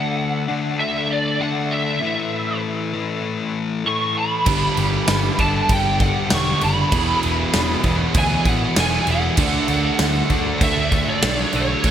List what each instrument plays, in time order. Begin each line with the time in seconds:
Already playing: distorted electric guitar D3 A3 D4, analog synth pad D4 A4 E5, lead electric guitar F#5
0.48 distorted electric guitar D3 A3 D4
0.79 lead electric guitar E5
1.12 lead electric guitar D5
1.39 distorted electric guitar D3 A3 D4, lead electric guitar F#5
1.71 lead electric guitar E5
2.01 distorted electric guitar A2 E3 A3, analog synth pad A3 E4 B4
2.93 distorted electric guitar A2 E3 A3
3.85 distorted electric guitar A2 E3 A3, lead electric guitar C#6
4.18 lead electric guitar B5
4.46 picked electric bass G1, distorted electric guitar G2 D3 G3 B3 D4 G4, analog synth pad G3 D4 A4, kick, crash
4.77 picked electric bass G1, distorted electric guitar G2 D3 G3 B3 D4 G4, crash
5.07 picked electric bass G1, distorted electric guitar G2 D3 G3 B3 D4 G4, snare, crash
5.38 picked electric bass G1, distorted electric guitar G2 D3 G3 B3 D4 G4, lead electric guitar A5, kick, crash
5.69 picked electric bass G1, distorted electric guitar G2 D3 G3 B3 D4 G4, lead electric guitar G5, kick, crash
5.99 distorted electric guitar G2 D3 G3 B3 D4 G4, lead electric guitar F#5, kick, crash
6.30 picked electric bass E1, distorted electric guitar G2 D3 G3 B3 D4 G4, snare, crash
6.34 lead electric guitar C#6
6.61 picked electric bass F#1, distorted electric guitar G2 D3 G3 B3 D4 G4, lead electric guitar B5, crash
6.91 picked electric bass E1, distorted electric guitar E2 B2 E3 G#3 B3 E4 G#4, analog synth pad E3 B3 F#4, kick, crash
7.23 picked electric bass E1, distorted electric guitar E3 G#3 B3 E4 G#4, crash
7.52 picked electric bass E1, distorted electric guitar E3 G#3 B3 E4 G#4, snare, crash
7.84 picked electric bass E1, distorted electric guitar E2 B2 E3 G#3 B3 E4 G#4, kick, crash
8.14 picked electric bass D2, distorted electric guitar E3 G#3 B3 E4 G#4, kick, crash
8.18 lead electric guitar G#5
8.45 picked electric bass A1, distorted electric guitar E3 G#3 B3 E4 G#4, lead electric guitar F#5, kick, crash
8.76 picked electric bass E1, distorted electric guitar E2 B2 E3 G#3 B3 E4 G#4, snare, crash
8.80 lead electric guitar G#5
9.07 picked electric bass E1, distorted electric guitar E3 G#3 B3 E4 G#4, lead electric guitar F#5, crash
9.36 picked electric bass D2, distorted electric guitar D3 A3 D4 F#4 A4, analog synth pad D4 A4 E5, kick, crash
9.68 picked electric bass D2, distorted electric guitar D3 A3 D4 F#4 A4, crash
9.98 picked electric bass D2, distorted electric guitar D3 A3 D4 F#4 A4, snare, crash
10.02 lead electric guitar F#5
10.30 picked electric bass D2, distorted electric guitar D3 A3 D4 F#4 A4, kick, crash
10.61 picked electric bass D2, distorted electric guitar D3 A3 D4 F#4 A4, lead electric guitar E5, kick, crash
10.91 distorted electric guitar D3 A3 D4 F#4 A4, kick, crash
11.09 lead electric guitar D5
11.22 picked electric bass B1, distorted electric guitar D3 A3 D4 F#4 A4, snare, crash
11.53 picked electric bass B1, distorted electric guitar D3 A3 D4 F#4 A4, lead electric guitar C#5, crash
11.84 picked electric bass A1, distorted electric guitar A2 E3 A3 C#4 E4 A4, analog synth pad A3 E4 B4, kick, crash